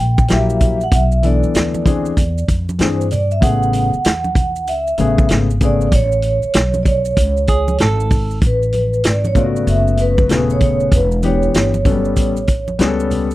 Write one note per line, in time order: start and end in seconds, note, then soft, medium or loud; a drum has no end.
0.00 0.28 A#1 medium
0.00 0.32 G5 loud
0.18 kick loud
0.18 high conga medium
0.18 maracas soft
0.28 0.90 A#1 medium
0.28 0.76 F#3 medium
0.28 0.76 A#3 medium
0.28 0.77 E4 medium
0.28 0.77 G4 medium
0.28 0.83 E5 medium
0.28 snare loud
0.28 closed hi-hat medium
0.28 maracas medium
0.50 maracas soft
0.61 kick medium
0.61 closed hi-hat medium
0.61 low conga medium
0.61 maracas soft
0.81 0.94 F#5 medium
0.81 maracas soft
0.92 1.40 B1 loud
0.92 1.26 E5 loud
0.92 kick loud
0.92 closed hi-hat medium
0.92 maracas medium
1.12 maracas soft
1.22 1.84 E3 medium
1.22 2.12 B3 medium
1.22 1.85 D4 medium
1.22 2.13 A4 medium
1.22 2.45 D5 medium
1.22 closed hi-hat medium
1.22 maracas soft
1.43 muted upright bass stroke soft
1.43 maracas soft
1.55 2.14 D2 medium
1.55 snare loud
1.55 closed hi-hat loud
1.55 maracas medium
1.74 high conga medium
1.74 maracas soft
1.85 2.10 E3 medium
1.85 2.10 C4 medium
1.85 2.11 D4 medium
1.85 2.11 G#4 medium
1.85 kick medium
1.85 closed hi-hat medium
1.85 low conga medium
1.85 maracas soft
2.05 maracas soft
2.17 2.47 E2 loud
2.17 kick medium
2.17 closed hi-hat medium
2.17 maracas medium
2.38 maracas soft
2.48 2.78 F2 medium
2.48 kick medium
2.48 closed hi-hat medium
2.48 maracas soft
2.69 high conga medium
2.69 maracas soft
2.79 3.39 G2 medium
2.79 3.03 E3 medium
2.79 3.04 C4 medium
2.79 3.04 D4 medium
2.79 3.05 G#4 medium
2.79 3.10 C5 medium
2.79 snare loud
2.79 closed hi-hat medium
2.79 maracas medium
3.01 maracas soft
3.11 3.32 D5 loud
3.11 closed hi-hat medium
3.11 low conga medium
3.11 maracas soft
3.31 3.43 E5 medium
3.31 maracas soft
3.41 3.90 A1 loud
3.41 3.88 C#3 medium
3.41 3.89 A3 medium
3.41 3.90 B3 medium
3.41 3.90 G#4 medium
3.41 4.71 F#5 loud
3.41 kick loud
3.41 closed hi-hat medium
3.41 maracas medium
3.63 maracas soft
3.73 closed hi-hat medium
3.73 maracas soft
3.93 muted upright bass stroke soft
3.93 maracas soft
4.04 4.68 E2 medium
4.04 snare loud
4.04 closed hi-hat loud
4.04 maracas medium
4.24 high conga medium
4.24 maracas soft
4.35 kick medium
4.35 closed hi-hat medium
4.35 low conga medium
4.35 maracas soft
4.56 maracas medium
4.67 4.97 C#2 loud
4.67 5.26 E5 medium
4.67 closed hi-hat medium
4.67 maracas medium
4.87 maracas soft
4.97 5.28 A1 medium
4.97 5.45 C#3 medium
4.97 5.46 A3 medium
4.97 5.46 B3 medium
4.97 5.46 G#4 medium
4.97 closed hi-hat medium
4.97 maracas soft
5.18 kick loud
5.18 high conga medium
5.18 maracas soft
5.29 5.90 G#1 medium
5.29 snare loud
5.29 closed hi-hat medium
5.29 maracas medium
5.50 maracas soft
5.60 5.85 C#3 medium
5.60 5.86 A3 medium
5.60 5.86 B3 medium
5.60 5.86 G#4 medium
5.60 kick medium
5.60 closed hi-hat medium
5.60 low conga medium
5.60 maracas soft
5.65 5.95 D5 loud
5.81 maracas soft
5.92 6.41 A1 loud
5.92 6.78 C#5 loud
5.92 kick loud
5.92 closed hi-hat medium
5.92 maracas medium
6.12 maracas soft
6.22 closed hi-hat medium
6.22 maracas soft
6.43 muted upright bass stroke soft
6.43 maracas soft
6.53 7.14 B1 medium
6.53 snare loud
6.53 closed hi-hat loud
6.53 maracas medium
6.74 high conga medium
6.74 maracas soft
6.83 6.87 D5 medium
6.83 kick medium
6.83 closed hi-hat medium
6.83 low conga medium
6.83 maracas soft
6.88 7.77 C#5 medium
7.05 maracas medium
7.17 7.76 C#2 loud
7.17 kick medium
7.17 closed hi-hat medium
7.17 maracas medium
7.37 maracas soft
7.47 7.81 G#4 medium
7.47 kick medium
7.47 closed hi-hat medium
7.47 maracas soft
7.68 high conga medium
7.68 maracas soft
7.78 8.39 G#1 loud
7.78 8.39 A4 loud
7.78 snare medium
7.78 closed hi-hat medium
7.78 maracas medium
8.00 maracas soft
8.10 kick medium
8.10 open hi-hat soft
8.10 low conga medium
8.10 maracas soft
8.31 maracas soft
8.41 9.01 A1 loud
8.41 kick loud
8.41 closed hi-hat medium
8.41 maracas medium
8.47 9.09 B4 loud
8.63 maracas soft
8.72 closed hi-hat medium
8.72 high conga soft
8.72 maracas soft
8.93 maracas soft
9.04 9.64 G#1 medium
9.04 snare loud
9.04 closed hi-hat loud
9.04 maracas medium
9.09 9.25 D5 medium
9.25 9.37 C#5 medium
9.25 high conga medium
9.25 maracas soft
9.35 10.25 C#3 medium
9.35 10.25 A3 medium
9.35 10.26 B3 medium
9.35 9.45 F4 medium
9.35 9.69 D5 loud
9.35 kick medium
9.35 closed hi-hat medium
9.35 low conga medium
9.35 maracas soft
9.44 10.29 F#4 medium
9.56 maracas medium
9.67 10.26 F#1 medium
9.67 9.98 E5 loud
9.67 closed hi-hat medium
9.67 maracas medium
9.88 maracas soft
9.97 10.52 B4 medium
9.97 closed hi-hat medium
9.97 maracas soft
10.18 kick loud
10.18 high conga medium
10.18 maracas soft
10.28 10.89 D#1 medium
10.28 10.91 C#3 medium
10.28 10.92 A3 medium
10.28 10.92 B3 medium
10.28 10.38 F#4 medium
10.28 snare loud
10.28 closed hi-hat medium
10.28 maracas medium
10.37 10.96 G#4 medium
10.50 10.61 C#5 medium
10.50 maracas soft
10.60 10.94 C#5 medium
10.60 kick medium
10.60 closed hi-hat medium
10.60 low conga medium
10.60 maracas soft
10.80 maracas soft
10.92 11.51 E1 loud
10.92 11.09 B4 medium
10.92 kick loud
10.92 closed hi-hat medium
10.92 maracas medium
11.12 maracas soft
11.22 11.70 E3 medium
11.22 11.70 B3 medium
11.22 11.71 D4 medium
11.22 11.71 G4 medium
11.22 13.08 C#5 medium
11.22 closed hi-hat medium
11.22 high conga soft
11.22 maracas soft
11.42 maracas soft
11.54 12.17 G1 medium
11.54 snare loud
11.54 closed hi-hat loud
11.54 maracas medium
11.74 high conga medium
11.74 maracas soft
11.84 11.93 F#3 medium
11.84 12.33 B3 medium
11.84 12.33 C#4 medium
11.84 12.33 A4 medium
11.84 kick medium
11.84 closed hi-hat medium
11.84 low conga medium
11.84 maracas soft
11.91 12.36 G3 medium
12.05 maracas soft
12.17 12.76 A1 loud
12.17 kick medium
12.17 closed hi-hat medium
12.17 maracas medium
12.37 maracas soft
12.47 kick medium
12.47 closed hi-hat medium
12.47 maracas soft
12.68 high conga medium
12.68 maracas soft
12.79 13.35 C#2 medium
12.79 13.26 G3 medium
12.79 13.27 B3 medium
12.79 13.27 C#4 medium
12.79 12.88 G#4 medium
12.79 snare loud
12.79 closed hi-hat medium
12.79 maracas medium
12.88 13.31 A4 medium
13.00 maracas soft
13.11 closed hi-hat medium
13.11 low conga medium
13.11 maracas soft
13.31 maracas soft